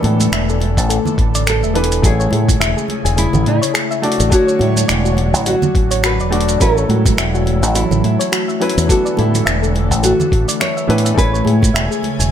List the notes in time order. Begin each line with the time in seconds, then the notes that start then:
Already playing: D3 E3 A3 B3 D4 A4 B4
0.03 A2 A4, open hi-hat, high conga
0.20 open hi-hat, high conga, shaker
0.32 E1 E5, finger snap, shaker
0.49 A4, shaker
0.60 open hi-hat, high conga
0.77 A1 A5, kick, open hi-hat, shaker
0.82 A4
0.89 A4, open hi-hat, shaker
1.05 low conga, shaker
1.18 A1, kick, open hi-hat
1.35 D5, open hi-hat, shaker
1.47 A4, finger snap, open hi-hat, shaker
1.63 E1 E5, shaker
1.74 E3 B3 D4 A4 B4, open hi-hat
1.84 open hi-hat
1.92 open hi-hat, shaker
2.02 A1 C#3 A3 E4 G#4, kick, open hi-hat, shaker
2.07 C#5
2.20 C#5, shaker
2.31 A2 G#4, open hi-hat, high conga
2.49 kick, open hi-hat, high conga, shaker
2.60 E1 E5, finger snap, shaker
2.77 G#4, shaker
2.88 open hi-hat, high conga
3.05 E1 G#5, open hi-hat, shaker
3.17 E4 G#4, open hi-hat, shaker
3.33 A1, low conga, shaker
3.46 A2 E4, open hi-hat
3.62 C#5, open hi-hat, shaker
3.74 G#4, finger snap, open hi-hat, shaker
3.91 E5, shaker
4.02 D3 F#3 A3 D4 F#4 C#5 D5, open hi-hat
4.12 open hi-hat
4.20 A1, open hi-hat, shaker
4.30 A3 D4 F#4, kick, open hi-hat, shaker
4.34 C#5
4.47 C#5, shaker
4.59 A2 E4 F#4, open hi-hat, high conga
4.76 open hi-hat, high conga, shaker
4.88 E1 D5, finger snap, shaker
5.05 F#4, shaker
5.17 open hi-hat, high conga
5.34 A1 F#5, open hi-hat, shaker
5.46 F#4, open hi-hat, shaker
5.62 low conga, shaker
5.75 A1, kick, open hi-hat
5.91 C#5, open hi-hat, shaker
6.03 F#4 B4, finger snap, open hi-hat, shaker
6.20 E1 D5, shaker
6.30 A3 D4 F#4 D5, open hi-hat
6.41 open hi-hat
6.49 open hi-hat, shaker
6.58 A1 E3 F#3 A3 C#4 E4 F#4 A4, kick, open hi-hat, shaker
6.63 A4
6.77 C#5, shaker
6.89 A2 F#4, open hi-hat, high conga
7.05 kick, open hi-hat, high conga, shaker
7.17 E1 E5, finger snap, shaker
7.34 F#4, shaker
7.46 open hi-hat, high conga
7.62 A1 F#5, open hi-hat, shaker
7.75 E4 F#4, open hi-hat, shaker
7.91 A1, low conga, shaker
8.04 A2 E4, open hi-hat
8.19 C#5, open hi-hat, shaker
8.32 F#4, finger snap, open hi-hat, shaker
8.48 E5, shaker
8.60 F#3 C#4 E4 F#4 B4, open hi-hat
8.70 open hi-hat
8.78 E2, open hi-hat, shaker
8.87 D3 E3 B3 D4 F#4 A4, kick, open hi-hat, shaker
8.92 A4
9.05 D5, shaker
9.17 A2 E4 A4, open hi-hat, high conga
9.35 open hi-hat, high conga, shaker
9.46 E1 E5, finger snap, shaker
9.62 A4, shaker
9.75 open hi-hat, high conga
9.91 A1 A5, kick, open hi-hat, shaker
10.03 F#4 A4, open hi-hat, shaker
10.20 low conga, shaker
10.32 A1, kick, open hi-hat
10.48 D5, open hi-hat, shaker
10.60 C#5 E5, finger snap, open hi-hat, shaker
10.77 E5, shaker
10.87 A2 E3 B3 D4 B4 E5, open hi-hat
10.98 open hi-hat
11.05 E5, open hi-hat, shaker
11.14 A1 A3 E4 G#4 G#5, kick
11.18 C#3 B4 C#5 G#5, open hi-hat, shaker
11.33 C#5, shaker
11.45 A2 G#4, open hi-hat, high conga
11.62 kick, open hi-hat, high conga, shaker
11.74 E1 E5, finger snap, shaker
11.91 G#4, shaker
12.03 open hi-hat, high conga
12.19 E1 G#5, open hi-hat, shaker